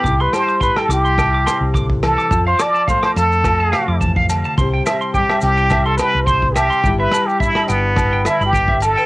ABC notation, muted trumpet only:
X:1
M:4/4
L:1/16
Q:"Swing 16ths" 1/4=106
K:C
V:1 name="Muted trumpet"
G B c2 B A G6 z2 A2- | A c d2 c c A6 z4 | z4 G2 G3 A B2 c2 G2- | G B2 G E2 B,4 E G3 A2 |]